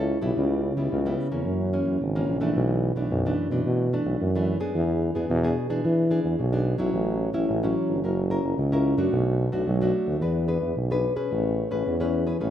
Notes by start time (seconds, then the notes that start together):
Already playing: C#2 C#3 C#4 E4 A4
0.22 B1 G3 B3 E4
0.37 C#2 C#3
0.77 C#2 G3 B3 E4
0.92 C#2 C#3
1.06 G3 B3 E4
1.31 E2 E3 A#3 C#4
1.46 F#2
1.73 E3 A#3 C#4
1.86 F#2
2.01 G#1 C#3
2.15 E3 A#3 C#4
2.28 A#1
2.41 E3 A3 D4
2.56 B1 B2
2.95 B1 E3 A3 D4
3.10 B1 F#2
3.26 E3 A3 D4
3.50 B2 E3 A3 D4
3.65 B2
3.93 E3 A3 D4
4.05 B1
4.20 F#2
4.35 E3 A3 D4
4.60 B3 D4 G#4
4.75 E2 E3
5.15 E2 B3 D4 G#4
5.30 E2 B2
5.43 B3 D4 G#4
5.70 E3 B3 D4 G#4
5.84 E3
6.11 B3 D4 G#4
6.24 E2
6.39 B1 B2
6.53 B3 D4 G#4
6.78 B1 F#3 C#4 E4
6.93 A1 A2
7.33 A1 F#3 C#4 E4
7.49 A1 E3
7.63 F#3 C#4 E4
7.88 G1
8.03 F#1 F#3 C#4 E4 A#4
8.30 C#4 E4 A#4
8.43 F#1
8.58 C#2 C#3
8.72 C#4 E4 A#4
8.97 F#2 A3 D4 F#4
9.12 B1 B2
9.52 B1 A3 D4 F#4
9.67 B1 F#3
9.81 A3 D4 F#4
10.07 D2
10.21 E2 E3 D4 G#4 B4
10.48 D4 G#4 B4
10.62 E2
10.76 B1 B2
10.91 D4 G#4 B4
11.16 C#4 G#4 B4
11.31 A1 A3
11.71 A1 C#4 G#4 B4
11.86 E2 E3
12.00 C#4 G#4 B4
12.26 C#4 G#4 B4
12.40 A1 A3 C#4 G#4 B4